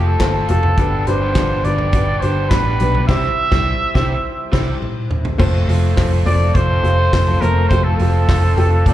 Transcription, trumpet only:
0.07 0.50 A4 medium
0.51 1.08 A4 medium
1.07 1.66 C5 medium
1.64 2.22 D5 loud
2.20 2.50 C5 medium
2.49 3.07 B4 loud
3.08 4.77 E5 loud
6.26 6.57 D5 loud
6.55 7.42 C5 loud
7.41 7.68 A#4 medium
7.69 7.85 C5 loud
7.84 7.97 A4 medium
7.97 8.94 A4 medium

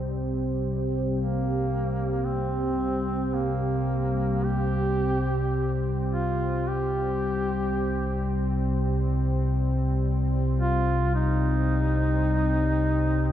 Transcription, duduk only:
1.15 2.26 A#3 medium
2.25 3.36 C4 medium
3.34 4.46 A#3 medium
4.44 5.86 G4 loud
6.12 6.70 F4 medium
6.68 8.36 G4 loud
10.59 11.12 F4 loud
11.15 13.32 D#4 loud

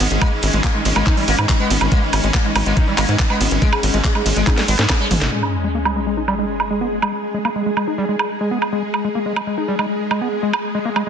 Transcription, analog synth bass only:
0.00 0.08 G#1 loud
0.11 0.18 G#1 medium
0.43 0.50 G#1 loud
0.53 0.61 G#1 medium
0.85 0.93 G#1 loud
0.96 1.03 G#1 medium
1.28 1.35 G#1 loud
1.39 1.46 G#2 medium
1.70 1.78 G#1 medium
1.81 1.89 G#1 medium
2.13 2.21 G#1 loud
2.24 2.31 G#1 medium
2.56 2.63 G#1 loud
2.66 2.74 G#1 medium
2.98 3.06 G#1 loud
3.09 3.16 G#2 medium
3.41 3.48 G#1 medium
3.51 3.59 G#1 medium
3.83 3.91 G#1 loud
3.94 4.01 G#1 medium
4.26 4.33 G#1 medium
4.36 4.44 G#1 medium
4.68 4.76 G#1 medium
4.79 4.86 G#2 medium
5.11 5.18 G#1 medium
5.21 5.29 G#1 medium

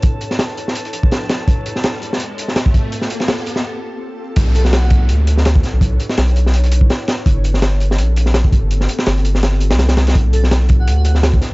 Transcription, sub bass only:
4.37 5.11 B1 loud
5.09 5.62 D2 medium
5.73 5.98 B1 medium
6.18 6.89 B1 loud
7.26 8.00 G1 medium
7.98 8.51 A#1 medium
8.62 8.87 G1 medium
9.06 9.72 G1 loud
9.71 10.14 C2 medium
10.15 10.89 B1 medium
10.87 11.40 D2 medium

